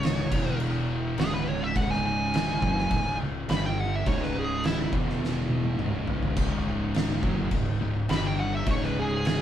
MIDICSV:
0, 0, Header, 1, 5, 480
1, 0, Start_track
1, 0, Tempo, 576369
1, 1472, Time_signature, 4, 2, 24, 8
1, 7842, End_track
2, 0, Start_track
2, 0, Title_t, "Lead electric guitar"
2, 0, Program_c, 0, 29
2, 0, Note_on_c, 0, 73, 86
2, 480, Note_off_c, 0, 73, 0
2, 995, Note_on_c, 0, 68, 91
2, 1110, Note_off_c, 0, 68, 0
2, 1119, Note_on_c, 0, 71, 87
2, 1229, Note_on_c, 0, 73, 89
2, 1232, Note_off_c, 0, 71, 0
2, 1355, Note_off_c, 0, 73, 0
2, 1355, Note_on_c, 0, 76, 83
2, 1470, Note_off_c, 0, 76, 0
2, 1470, Note_on_c, 0, 78, 85
2, 1587, Note_off_c, 0, 78, 0
2, 1592, Note_on_c, 0, 80, 77
2, 1701, Note_off_c, 0, 80, 0
2, 1711, Note_on_c, 0, 80, 100
2, 2642, Note_off_c, 0, 80, 0
2, 2913, Note_on_c, 0, 83, 90
2, 3028, Note_off_c, 0, 83, 0
2, 3047, Note_on_c, 0, 79, 93
2, 3164, Note_off_c, 0, 79, 0
2, 3164, Note_on_c, 0, 78, 91
2, 3292, Note_off_c, 0, 78, 0
2, 3292, Note_on_c, 0, 76, 94
2, 3397, Note_on_c, 0, 73, 88
2, 3398, Note_off_c, 0, 76, 0
2, 3526, Note_off_c, 0, 73, 0
2, 3526, Note_on_c, 0, 71, 85
2, 3653, Note_off_c, 0, 71, 0
2, 3653, Note_on_c, 0, 68, 83
2, 3873, Note_on_c, 0, 64, 92
2, 3874, Note_off_c, 0, 68, 0
2, 4104, Note_off_c, 0, 64, 0
2, 6748, Note_on_c, 0, 83, 93
2, 6865, Note_off_c, 0, 83, 0
2, 6884, Note_on_c, 0, 79, 87
2, 6990, Note_off_c, 0, 79, 0
2, 6994, Note_on_c, 0, 78, 92
2, 7117, Note_off_c, 0, 78, 0
2, 7117, Note_on_c, 0, 76, 88
2, 7229, Note_off_c, 0, 76, 0
2, 7251, Note_on_c, 0, 73, 97
2, 7356, Note_off_c, 0, 73, 0
2, 7357, Note_on_c, 0, 71, 85
2, 7488, Note_off_c, 0, 71, 0
2, 7488, Note_on_c, 0, 68, 90
2, 7709, Note_off_c, 0, 68, 0
2, 7719, Note_on_c, 0, 68, 94
2, 7842, Note_off_c, 0, 68, 0
2, 7842, End_track
3, 0, Start_track
3, 0, Title_t, "Distorted electric guitar"
3, 0, Program_c, 1, 30
3, 0, Note_on_c, 1, 37, 93
3, 0, Note_on_c, 1, 44, 103
3, 0, Note_on_c, 1, 49, 106
3, 257, Note_off_c, 1, 37, 0
3, 259, Note_off_c, 1, 44, 0
3, 260, Note_off_c, 1, 49, 0
3, 269, Note_on_c, 1, 40, 86
3, 269, Note_on_c, 1, 47, 99
3, 273, Note_on_c, 1, 52, 99
3, 980, Note_off_c, 1, 40, 0
3, 983, Note_on_c, 1, 37, 93
3, 984, Note_off_c, 1, 47, 0
3, 985, Note_off_c, 1, 52, 0
3, 991, Note_on_c, 1, 44, 91
3, 994, Note_on_c, 1, 49, 99
3, 1452, Note_off_c, 1, 37, 0
3, 1456, Note_off_c, 1, 44, 0
3, 1461, Note_off_c, 1, 49, 0
3, 1462, Note_on_c, 1, 37, 97
3, 1466, Note_on_c, 1, 44, 99
3, 1471, Note_on_c, 1, 49, 108
3, 2179, Note_off_c, 1, 37, 0
3, 2182, Note_off_c, 1, 44, 0
3, 2182, Note_off_c, 1, 49, 0
3, 2186, Note_on_c, 1, 42, 98
3, 2192, Note_on_c, 1, 49, 98
3, 2194, Note_on_c, 1, 54, 107
3, 2420, Note_off_c, 1, 42, 0
3, 2420, Note_off_c, 1, 49, 0
3, 2423, Note_on_c, 1, 37, 70
3, 2423, Note_on_c, 1, 44, 84
3, 2425, Note_off_c, 1, 54, 0
3, 2619, Note_off_c, 1, 37, 0
3, 2619, Note_off_c, 1, 44, 0
3, 2665, Note_on_c, 1, 37, 68
3, 2671, Note_on_c, 1, 44, 75
3, 2860, Note_off_c, 1, 37, 0
3, 2863, Note_off_c, 1, 44, 0
3, 2908, Note_on_c, 1, 43, 98
3, 2914, Note_on_c, 1, 50, 94
3, 2916, Note_on_c, 1, 55, 107
3, 3382, Note_off_c, 1, 43, 0
3, 3385, Note_off_c, 1, 50, 0
3, 3385, Note_off_c, 1, 55, 0
3, 3390, Note_on_c, 1, 37, 95
3, 3395, Note_on_c, 1, 44, 97
3, 3397, Note_on_c, 1, 49, 104
3, 4102, Note_off_c, 1, 37, 0
3, 4105, Note_off_c, 1, 44, 0
3, 4106, Note_off_c, 1, 49, 0
3, 4113, Note_on_c, 1, 40, 86
3, 4113, Note_on_c, 1, 47, 99
3, 4118, Note_on_c, 1, 52, 111
3, 4823, Note_off_c, 1, 40, 0
3, 4823, Note_off_c, 1, 47, 0
3, 4826, Note_off_c, 1, 52, 0
3, 4826, Note_on_c, 1, 37, 96
3, 4831, Note_on_c, 1, 44, 95
3, 4832, Note_on_c, 1, 49, 105
3, 5295, Note_off_c, 1, 37, 0
3, 5300, Note_off_c, 1, 44, 0
3, 5301, Note_off_c, 1, 49, 0
3, 5305, Note_on_c, 1, 37, 99
3, 5310, Note_on_c, 1, 44, 106
3, 5311, Note_on_c, 1, 49, 102
3, 6009, Note_off_c, 1, 49, 0
3, 6012, Note_off_c, 1, 37, 0
3, 6016, Note_off_c, 1, 44, 0
3, 6016, Note_on_c, 1, 42, 88
3, 6019, Note_on_c, 1, 49, 96
3, 6025, Note_on_c, 1, 54, 103
3, 6255, Note_off_c, 1, 42, 0
3, 6257, Note_off_c, 1, 49, 0
3, 6260, Note_off_c, 1, 54, 0
3, 6261, Note_on_c, 1, 37, 74
3, 6263, Note_on_c, 1, 44, 78
3, 6457, Note_off_c, 1, 37, 0
3, 6458, Note_off_c, 1, 44, 0
3, 6502, Note_on_c, 1, 44, 70
3, 6503, Note_on_c, 1, 37, 62
3, 6697, Note_off_c, 1, 37, 0
3, 6697, Note_off_c, 1, 44, 0
3, 6738, Note_on_c, 1, 43, 94
3, 6743, Note_on_c, 1, 50, 103
3, 6746, Note_on_c, 1, 55, 105
3, 7211, Note_off_c, 1, 43, 0
3, 7215, Note_on_c, 1, 37, 100
3, 7217, Note_off_c, 1, 50, 0
3, 7220, Note_off_c, 1, 55, 0
3, 7220, Note_on_c, 1, 44, 101
3, 7224, Note_on_c, 1, 49, 105
3, 7842, Note_off_c, 1, 37, 0
3, 7842, Note_off_c, 1, 44, 0
3, 7842, Note_off_c, 1, 49, 0
3, 7842, End_track
4, 0, Start_track
4, 0, Title_t, "Fingered electric bass"
4, 0, Program_c, 2, 33
4, 0, Note_on_c, 2, 25, 92
4, 234, Note_off_c, 2, 25, 0
4, 263, Note_on_c, 2, 28, 94
4, 954, Note_off_c, 2, 28, 0
4, 979, Note_on_c, 2, 25, 97
4, 1432, Note_off_c, 2, 25, 0
4, 1463, Note_on_c, 2, 25, 93
4, 2154, Note_off_c, 2, 25, 0
4, 2183, Note_on_c, 2, 30, 99
4, 2410, Note_off_c, 2, 30, 0
4, 2421, Note_on_c, 2, 25, 83
4, 2649, Note_off_c, 2, 25, 0
4, 2671, Note_on_c, 2, 25, 83
4, 2894, Note_off_c, 2, 25, 0
4, 2909, Note_on_c, 2, 31, 102
4, 3356, Note_off_c, 2, 31, 0
4, 3384, Note_on_c, 2, 25, 89
4, 4073, Note_off_c, 2, 25, 0
4, 4101, Note_on_c, 2, 28, 98
4, 4792, Note_off_c, 2, 28, 0
4, 4826, Note_on_c, 2, 25, 98
4, 5274, Note_off_c, 2, 25, 0
4, 5303, Note_on_c, 2, 25, 87
4, 5992, Note_off_c, 2, 25, 0
4, 6019, Note_on_c, 2, 30, 97
4, 6246, Note_off_c, 2, 30, 0
4, 6259, Note_on_c, 2, 25, 84
4, 6486, Note_off_c, 2, 25, 0
4, 6500, Note_on_c, 2, 25, 82
4, 6727, Note_off_c, 2, 25, 0
4, 6740, Note_on_c, 2, 31, 105
4, 7190, Note_off_c, 2, 31, 0
4, 7218, Note_on_c, 2, 25, 93
4, 7842, Note_off_c, 2, 25, 0
4, 7842, End_track
5, 0, Start_track
5, 0, Title_t, "Drums"
5, 26, Note_on_c, 9, 49, 61
5, 42, Note_on_c, 9, 38, 116
5, 109, Note_off_c, 9, 49, 0
5, 126, Note_off_c, 9, 38, 0
5, 264, Note_on_c, 9, 36, 107
5, 265, Note_on_c, 9, 49, 95
5, 347, Note_off_c, 9, 36, 0
5, 349, Note_off_c, 9, 49, 0
5, 499, Note_on_c, 9, 49, 65
5, 582, Note_off_c, 9, 49, 0
5, 980, Note_on_c, 9, 49, 60
5, 997, Note_on_c, 9, 38, 108
5, 1063, Note_off_c, 9, 49, 0
5, 1080, Note_off_c, 9, 38, 0
5, 1464, Note_on_c, 9, 36, 112
5, 1464, Note_on_c, 9, 49, 67
5, 1547, Note_off_c, 9, 36, 0
5, 1547, Note_off_c, 9, 49, 0
5, 1600, Note_on_c, 9, 38, 34
5, 1684, Note_off_c, 9, 38, 0
5, 1946, Note_on_c, 9, 49, 68
5, 1963, Note_on_c, 9, 38, 118
5, 2029, Note_off_c, 9, 49, 0
5, 2046, Note_off_c, 9, 38, 0
5, 2185, Note_on_c, 9, 36, 102
5, 2268, Note_off_c, 9, 36, 0
5, 2322, Note_on_c, 9, 38, 34
5, 2405, Note_off_c, 9, 38, 0
5, 2420, Note_on_c, 9, 49, 68
5, 2424, Note_on_c, 9, 36, 93
5, 2503, Note_off_c, 9, 49, 0
5, 2507, Note_off_c, 9, 36, 0
5, 2904, Note_on_c, 9, 49, 60
5, 2921, Note_on_c, 9, 38, 109
5, 2988, Note_off_c, 9, 49, 0
5, 3004, Note_off_c, 9, 38, 0
5, 3384, Note_on_c, 9, 36, 117
5, 3386, Note_on_c, 9, 49, 63
5, 3467, Note_off_c, 9, 36, 0
5, 3469, Note_off_c, 9, 49, 0
5, 3522, Note_on_c, 9, 38, 34
5, 3606, Note_off_c, 9, 38, 0
5, 3861, Note_on_c, 9, 49, 58
5, 3878, Note_on_c, 9, 38, 118
5, 3944, Note_off_c, 9, 49, 0
5, 3961, Note_off_c, 9, 38, 0
5, 4104, Note_on_c, 9, 36, 104
5, 4187, Note_off_c, 9, 36, 0
5, 4243, Note_on_c, 9, 38, 34
5, 4326, Note_off_c, 9, 38, 0
5, 4364, Note_on_c, 9, 38, 65
5, 4448, Note_off_c, 9, 38, 0
5, 4578, Note_on_c, 9, 48, 77
5, 4661, Note_off_c, 9, 48, 0
5, 4698, Note_on_c, 9, 48, 68
5, 4781, Note_off_c, 9, 48, 0
5, 4822, Note_on_c, 9, 47, 89
5, 4906, Note_off_c, 9, 47, 0
5, 5059, Note_on_c, 9, 43, 97
5, 5142, Note_off_c, 9, 43, 0
5, 5185, Note_on_c, 9, 43, 91
5, 5268, Note_off_c, 9, 43, 0
5, 5300, Note_on_c, 9, 49, 70
5, 5300, Note_on_c, 9, 55, 92
5, 5303, Note_on_c, 9, 36, 111
5, 5384, Note_off_c, 9, 49, 0
5, 5384, Note_off_c, 9, 55, 0
5, 5386, Note_off_c, 9, 36, 0
5, 5783, Note_on_c, 9, 49, 64
5, 5800, Note_on_c, 9, 38, 113
5, 5866, Note_off_c, 9, 49, 0
5, 5883, Note_off_c, 9, 38, 0
5, 6020, Note_on_c, 9, 36, 101
5, 6104, Note_off_c, 9, 36, 0
5, 6254, Note_on_c, 9, 49, 65
5, 6258, Note_on_c, 9, 36, 98
5, 6338, Note_off_c, 9, 49, 0
5, 6341, Note_off_c, 9, 36, 0
5, 6737, Note_on_c, 9, 49, 59
5, 6754, Note_on_c, 9, 38, 113
5, 6821, Note_off_c, 9, 49, 0
5, 6837, Note_off_c, 9, 38, 0
5, 7216, Note_on_c, 9, 49, 65
5, 7218, Note_on_c, 9, 36, 119
5, 7299, Note_off_c, 9, 49, 0
5, 7301, Note_off_c, 9, 36, 0
5, 7353, Note_on_c, 9, 38, 33
5, 7436, Note_off_c, 9, 38, 0
5, 7703, Note_on_c, 9, 49, 62
5, 7720, Note_on_c, 9, 38, 125
5, 7787, Note_off_c, 9, 49, 0
5, 7803, Note_off_c, 9, 38, 0
5, 7842, End_track
0, 0, End_of_file